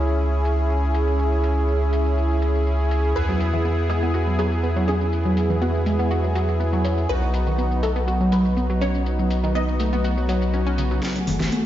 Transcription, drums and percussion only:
0.09 shaker
0.21 shaker
0.34 shaker
0.45 open hi-hat, shaker
0.58 shaker
0.70 shaker
0.83 shaker
0.94 open hi-hat, shaker
1.07 shaker
1.19 shaker
1.32 shaker
1.44 open hi-hat, shaker
1.57 shaker
1.68 shaker
1.81 shaker
1.93 open hi-hat, shaker
2.06 shaker
2.17 shaker
2.30 shaker
2.42 open hi-hat, shaker
2.55 shaker
2.67 shaker
2.80 shaker
2.91 open hi-hat, shaker
3.04 shaker
3.16 shaker
3.29 shaker
3.40 open hi-hat, shaker
3.53 shaker
3.65 shaker
3.78 shaker
3.90 open hi-hat, shaker
4.03 shaker
4.14 shaker
4.27 shaker
4.39 open hi-hat, shaker
4.52 shaker
4.63 shaker
4.76 shaker
4.88 open hi-hat, shaker
5.01 shaker
5.13 shaker
5.25 shaker
5.37 open hi-hat, shaker
5.50 shaker
5.62 shaker
5.75 shaker
5.86 open hi-hat, shaker
5.99 shaker
6.11 shaker
6.24 shaker
6.35 open hi-hat, shaker
6.48 shaker
6.60 shaker
6.73 shaker
6.85 open hi-hat, shaker
6.98 shaker
7.09 shaker
7.22 shaker
7.34 open hi-hat, shaker
7.47 shaker
7.58 shaker
7.71 shaker
7.83 open hi-hat, shaker
7.96 shaker
8.08 shaker
8.21 shaker
8.32 open hi-hat, shaker
8.45 shaker
8.57 shaker
8.70 shaker
8.81 open hi-hat, shaker
8.94 shaker
9.06 shaker
9.19 shaker
9.31 open hi-hat, shaker
9.44 shaker
9.55 shaker
9.68 shaker
9.80 open hi-hat, shaker
9.93 shaker
10.04 shaker
10.17 shaker
10.29 open hi-hat, shaker
10.42 shaker
10.54 shaker
10.67 shaker
10.78 open hi-hat, shaker
10.91 shaker
11.03 snare, closed hi-hat
11.16 closed hi-hat
11.27 open hi-hat, high conga
11.40 snare, closed hi-hat
11.52 closed hi-hat

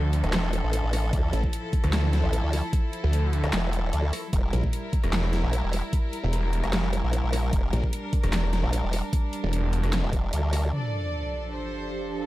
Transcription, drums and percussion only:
0.13 closed hi-hat
0.24 cross-stick, closed hi-hat
0.33 snare, clap, closed hi-hat
0.53 closed hi-hat
0.73 closed hi-hat
0.93 cross-stick, open hi-hat
1.13 kick, closed hi-hat
1.33 closed hi-hat
1.44 kick
1.53 closed hi-hat
1.73 kick, closed hi-hat
1.84 cross-stick, closed hi-hat
1.93 snare, clap, closed hi-hat
2.04 cross-stick
2.13 snare, closed hi-hat
2.33 closed hi-hat
2.53 open hi-hat
2.73 kick, closed hi-hat
2.93 closed hi-hat
3.13 closed hi-hat
3.33 closed hi-hat
3.44 cross-stick, closed hi-hat
3.53 snare, clap, closed hi-hat
3.73 closed hi-hat
3.93 closed hi-hat
4.13 cross-stick, open hi-hat
4.33 kick, closed hi-hat
4.53 closed hi-hat
4.64 kick
4.73 closed hi-hat
4.93 kick, closed hi-hat
5.04 cross-stick, closed hi-hat
5.13 snare, clap, closed hi-hat
5.24 cross-stick
5.33 snare, closed hi-hat
5.53 closed hi-hat
5.73 open hi-hat
5.93 kick, closed hi-hat
6.13 closed hi-hat
6.33 closed hi-hat
6.53 closed hi-hat
6.64 cross-stick, closed hi-hat
6.73 snare, clap, closed hi-hat
6.93 closed hi-hat
7.13 closed hi-hat
7.33 cross-stick, open hi-hat
7.53 kick, closed hi-hat
7.73 closed hi-hat
7.84 kick
7.93 closed hi-hat
8.13 kick, closed hi-hat
8.24 cross-stick, closed hi-hat
8.33 snare, clap, closed hi-hat
8.44 cross-stick
8.53 snare, closed hi-hat
8.73 closed hi-hat
8.93 open hi-hat
9.13 kick, closed hi-hat
9.33 closed hi-hat
9.53 closed hi-hat
9.73 closed hi-hat
9.84 cross-stick, closed hi-hat
9.93 snare, clap, closed hi-hat
10.13 kick, closed hi-hat
10.33 closed hi-hat
10.53 cross-stick, open hi-hat

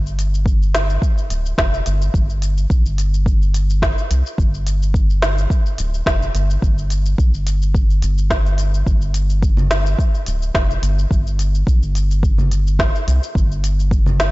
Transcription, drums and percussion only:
0.06 shaker
0.19 closed hi-hat, shaker
0.34 shaker
0.46 kick, shaker
0.62 shaker
0.75 snare, closed hi-hat, shaker
0.90 shaker
1.02 kick, shaker
1.18 shaker
1.30 closed hi-hat, shaker
1.46 shaker
1.58 kick, snare, shaker
1.74 shaker
1.86 closed hi-hat, shaker
2.02 shaker
2.14 kick, shaker
2.30 shaker
2.42 closed hi-hat, shaker
2.58 shaker
2.70 kick, shaker
2.86 shaker
2.98 closed hi-hat, shaker
3.14 shaker
3.26 kick, shaker
3.42 shaker
3.54 closed hi-hat, shaker
3.70 shaker
3.82 kick, snare, shaker
3.98 shaker
4.11 closed hi-hat, shaker
4.26 shaker
4.38 kick, shaker
4.54 shaker
4.67 closed hi-hat, shaker
4.82 shaker
4.94 kick, shaker
5.10 shaker
5.22 snare, closed hi-hat, shaker
5.38 shaker
5.50 kick, shaker
5.66 shaker
5.78 closed hi-hat, shaker
5.94 shaker
6.06 kick, snare, shaker
6.22 shaker
6.35 closed hi-hat, shaker
6.50 shaker
6.62 kick, shaker
6.78 shaker
6.90 closed hi-hat, shaker
7.06 shaker
7.18 kick, shaker
7.34 shaker
7.47 closed hi-hat, shaker
7.62 shaker
7.75 kick, shaker
7.90 shaker
8.02 closed hi-hat, shaker
8.18 shaker
8.30 kick, snare, shaker
8.46 shaker
8.58 closed hi-hat, shaker
8.74 shaker
8.87 kick, shaker
9.01 shaker
9.14 closed hi-hat, shaker
9.30 shaker
9.43 kick, shaker
9.57 low conga, shaker
9.71 snare, closed hi-hat, shaker
9.86 shaker
9.99 kick, shaker
10.15 shaker
10.26 closed hi-hat, shaker
10.42 shaker
10.55 kick, snare, shaker
10.71 shaker
10.83 closed hi-hat, shaker
10.99 shaker
11.11 kick, shaker
11.27 shaker
11.39 closed hi-hat, shaker
11.55 shaker
11.67 kick, shaker
11.83 shaker
11.95 closed hi-hat, shaker
12.11 shaker
12.23 kick, shaker
12.38 low conga, shaker
12.52 closed hi-hat, shaker
12.67 shaker
12.79 kick, snare, shaker
12.95 shaker
13.08 closed hi-hat, shaker
13.23 shaker
13.35 kick, shaker
13.52 shaker
13.64 closed hi-hat, shaker
13.80 shaker
13.91 kick, shaker
14.06 low conga, shaker
14.20 snare, closed hi-hat, shaker

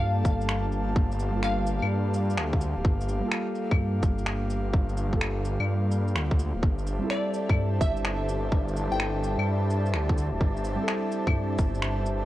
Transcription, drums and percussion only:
0.25 kick, shaker
0.41 shaker
0.49 finger snap
0.72 shaker
0.96 kick
1.12 shaker
1.19 shaker
1.43 finger snap
1.67 shaker
1.82 claves
2.14 shaker
2.30 shaker
2.38 finger snap
2.53 kick
2.61 shaker
2.85 kick
3.01 shaker
3.09 shaker
3.32 finger snap
3.55 shaker
3.71 kick, claves
4.03 kick, shaker
4.19 shaker
4.26 finger snap
4.50 shaker
4.74 kick
4.89 shaker
4.97 shaker
5.13 kick
5.21 finger snap
5.45 shaker
5.60 claves
5.91 shaker
6.08 shaker
6.15 finger snap
6.31 kick
6.39 shaker
6.63 kick
6.78 shaker
6.87 shaker
7.10 finger snap
7.34 shaker
7.49 kick, claves
7.81 kick, shaker
7.97 shaker
8.05 finger snap
8.29 shaker
8.52 kick
8.68 shaker
8.77 shaker
9.00 finger snap
9.24 shaker
9.39 claves
9.70 shaker
9.86 shaker
9.94 finger snap
10.09 kick
10.18 shaker
10.41 kick
10.57 shaker
10.65 shaker
10.88 finger snap
11.12 shaker
11.27 kick, claves
11.59 kick, shaker
11.75 shaker
11.82 finger snap
12.06 shaker

